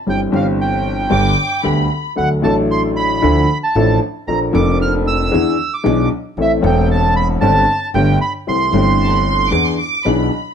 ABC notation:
X:1
M:4/4
L:1/16
Q:1/4=114
K:C
V:1 name="Violin section"
z8 d'4 b3 z | z16 | z16 | z16 |
z4 a b c'2 d' c' d'2 b4 |]
V:2 name="Bandoneon"
g2 f2 g8 z4 | ^f2 a2 c'2 b4- b a3 z2 | _b2 d'2 f'2 e'4- e' d'3 z2 | e2 g2 a2 b2 a4 g2 b2 |
c'8 z8 |]
V:3 name="Upright piano" clef=bass
[G,,,G,,E,G,CG]2 [G,,,G,,E,G,CG]6 [G,,,G,,D,G,B,G]2 z2 [D,,D,G,B,G]2 z2 | [D,,D,^F,A,DA]2 [A,,,A,,F,A,DA]6 [D,,D,=F,DEA]2 z2 [A,,,A,,F,DEA]2 z2 | [_B,,,_B,,F,_B,DA]2 [F,,,F,,F,B,DA]6 [E,,E,=B,D^G]2 z2 [=B,,,=B,,E,B,DG]2 z2 | [A,,,A,,E,A,CA]2 [E,,,E,,E,A,CA]6 [G,,,G,,D,G,CG]2 z2 [G,,,G,,D,A,B,G]2 z2 |
[C,,C,E,A,CG]2 [G,,,G,,E,A,CG]6 [E,,E,B,D^G]2 z2 [B,,,B,,E,B,DG]2 z2 |]
V:4 name="Upright bass" clef=bass
G,,,2 G,,,6 G,,,2 z2 D,,2 z2 | D,,2 A,,,6 D,,2 z2 A,,,2 z2 | _B,,,2 F,,,6 E,,2 z2 =B,,,2 z2 | A,,,2 E,,,6 G,,,2 z2 G,,,2 z2 |
C,,2 G,,,6 E,,2 z2 B,,,2 z2 |]